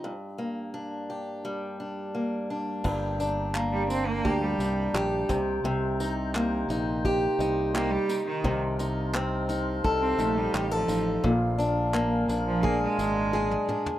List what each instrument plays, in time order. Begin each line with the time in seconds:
Already playing: steel-string acoustic guitar F3 C4 D#4 A4
0.04 steel-string acoustic guitar G2
0.38 steel-string acoustic guitar A#3
0.74 steel-string acoustic guitar D4
1.10 steel-string acoustic guitar G4
1.45 steel-string acoustic guitar G3
1.80 steel-string acoustic guitar D4
2.15 steel-string acoustic guitar A#3
2.50 steel-string acoustic guitar D4
2.84 fingered electric bass G1, steel-string acoustic guitar G2, flute section D5 G5 A#5 G6, kick, crash
3.20 steel-string acoustic guitar D4, tambourine
3.55 steel-string acoustic guitar A#3, clap
3.72 cello G3
3.88 cello C4, steel-string acoustic guitar D4, tambourine
4.07 cello A#3
4.25 fingered electric bass D2, steel-string acoustic guitar G4, kick
4.42 cello G3
4.59 fingered electric bass C2, steel-string acoustic guitar D4, tambourine
4.94 fingered electric bass A#1, steel-string acoustic guitar G4, clap
5.29 fingered electric bass C2, steel-string acoustic guitar C3, flute section D#5 A#5 C6, kick, tambourine
5.64 fingered electric bass C2, steel-string acoustic guitar C3
6.00 steel-string acoustic guitar D#4, tambourine
6.35 steel-string acoustic guitar A#3, clap
6.69 fingered electric bass A#1, steel-string acoustic guitar D#4, tambourine
7.05 steel-string acoustic guitar G4, kick
7.39 fingered electric bass C2, steel-string acoustic guitar D#4, tambourine
7.74 cello A#3, steel-string acoustic guitar G4, clap
7.91 cello G3
8.09 steel-string acoustic guitar D#4, tambourine
8.26 cello D#3
8.44 fingered electric bass C2, steel-string acoustic guitar C3, flute section F5 A5 C6 F6, kick
8.79 steel-string acoustic guitar D#4, tambourine
9.14 steel-string acoustic guitar C4, clap
9.49 steel-string acoustic guitar D#4, tambourine
9.84 fingered electric bass C2, steel-string acoustic guitar A4, kick
10.01 cello C4
10.18 fingered electric bass A#1, cello A3, steel-string acoustic guitar D#4, tambourine
10.37 cello G3
10.54 fingered electric bass A1, steel-string acoustic guitar G4, clap
10.71 cello F3, steel-string acoustic guitar A4
10.88 fingered electric bass A1, steel-string acoustic guitar D#4, tambourine
11.24 fingered electric bass A#1, steel-string acoustic guitar A#2, flute section D5 G#5 A#5 F6, kick
11.58 steel-string acoustic guitar D4, tambourine
11.94 steel-string acoustic guitar A#3, clap
12.28 fingered electric bass A#1, steel-string acoustic guitar D4, tambourine
12.47 cello F3
12.63 cello A#3, steel-string acoustic guitar G#4, kick
12.82 cello G#3
12.98 fingered electric bass G#1, steel-string acoustic guitar D4, tambourine
13.33 steel-string acoustic guitar G#4, snare
13.51 high tom
13.69 steel-string acoustic guitar D4, mid tom
13.86 floor tom